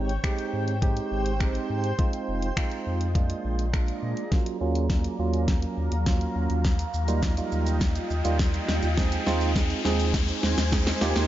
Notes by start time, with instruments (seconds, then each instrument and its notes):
Already playing: sub bass G#1, tine electric piano G#3 C4 D#4 G4, ambient pad C5 G5
0.09 closed hi-hat
0.24 tine electric piano G#3 C4 D#4 G4, finger snap, kick, closed hi-hat
0.38 closed hi-hat
0.53 sub bass G#2
0.68 closed hi-hat
0.82 tine electric piano G#3 C4 D#4 G4, kick, closed hi-hat
0.97 closed hi-hat
1.11 sub bass G#1
1.26 closed hi-hat
1.40 tine electric piano G#3 C4 D#4 G4, finger snap, kick, closed hi-hat
1.55 closed hi-hat
1.70 sub bass G#2
1.84 closed hi-hat
1.98 tine electric piano G#3 C4 D#4 F4, kick, closed hi-hat
2.13 closed hi-hat
2.28 sub bass F1
2.42 closed hi-hat
2.57 tine electric piano G#3 C4 D#4 F4, finger snap, kick, closed hi-hat
2.71 closed hi-hat
2.87 sub bass F2
3.01 closed hi-hat
3.15 tine electric piano G#3 A#3 D4 F4, kick, closed hi-hat
3.30 closed hi-hat
3.44 sub bass A#1
3.59 closed hi-hat
3.73 tine electric piano G#3 A#3 D4 F4, finger snap, kick, closed hi-hat
3.88 closed hi-hat
4.03 sub bass A#2
4.17 closed hi-hat
4.31 tine electric piano F#3 A#3 C#4 F4, ambient pad F#3 F5 A#5, kick, snare, closed hi-hat, riser
4.46 closed hi-hat
4.61 sub bass D#2, tine electric piano F#3 A#3 C#4 F4
4.75 closed hi-hat
4.90 tine electric piano C#4 F4, kick, snare, closed hi-hat
5.04 closed hi-hat
5.19 sub bass D#2, tine electric piano F#3 A#3 C#4 F4
5.33 closed hi-hat
5.48 kick, snare, closed hi-hat
5.62 closed hi-hat
5.77 sub bass D#2
5.92 sub bass D#2, closed hi-hat
6.06 tine electric piano F#3 A#3 C#4 F4, kick, snare, closed hi-hat
6.21 closed hi-hat
6.36 sub bass D#2
6.50 sub bass D#2, closed hi-hat
6.65 ambient pad F4 D#5 G5, kick, snare, closed hi-hat, shaker
6.79 closed hi-hat, shaker
6.94 sub bass D#2, shaker
7.08 tine electric piano G3 A#3 D#4 F4, closed hi-hat, shaker
7.23 kick, snare, closed hi-hat, shaker
7.37 tine electric piano G3 A#3 D#4 F4, closed hi-hat, shaker
7.52 sub bass D#2, shaker
7.66 closed hi-hat, shaker
7.81 kick, snare, closed hi-hat, shaker
7.95 closed hi-hat, shaker
8.10 sub bass D#2, shaker
8.25 sub bass D#2, tine electric piano G3 A#3 D#4 F4, closed hi-hat, shaker
8.39 kick, snare, closed hi-hat, shaker
8.54 closed hi-hat, shaker
8.68 sub bass D#2, snare, shaker
8.83 sub bass D#2, closed hi-hat, shaker
8.97 tine electric piano G#3 C4 D#4 G#4, ambient pad D#4 C5 G#5, kick, snare, closed hi-hat, shaker
9.12 closed hi-hat, shaker
9.27 sub bass D#2, tine electric piano G#3 C4 D#4 F4, snare, shaker
9.41 closed hi-hat, shaker
9.56 tine electric piano G#3 C4 D#4 G#4, kick, snare, closed hi-hat, shaker
9.70 closed hi-hat, shaker
9.85 sub bass D#2, tine electric piano G#3 C4 D#4 G#4, snare, shaker
10.00 closed hi-hat, shaker
10.14 kick, snare, closed hi-hat, shaker
10.29 closed hi-hat, shaker
10.43 sub bass D#2, snare, shaker
10.58 sub bass D#2, snare, closed hi-hat, shaker
10.72 tine electric piano G#3 C4 D#4 G#4, kick, snare, closed hi-hat, shaker
10.87 snare, closed hi-hat, shaker
11.01 sub bass D#2, tine electric piano A#3 D#4 F4 G4, ambient pad F4 D#5 G5, snare, shaker
11.16 sub bass D#2, snare, closed hi-hat, shaker